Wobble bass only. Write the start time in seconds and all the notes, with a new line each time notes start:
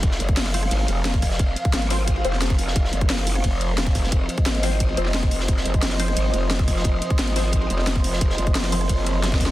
0.03 F1
0.20 F#1
0.71 G#1
0.88 F1
1.39 F1
1.74 G#1
2.25 F1
2.76 F1
2.93 F#1
3.44 F1
3.95 F1
4.12 F1
4.46 G#1
4.97 F1
5.49 F1
5.66 F#1
6.17 G#1
6.34 F1
6.85 F1
7.19 G#1
7.70 F1
8.21 F1
8.38 F#1
8.89 F#1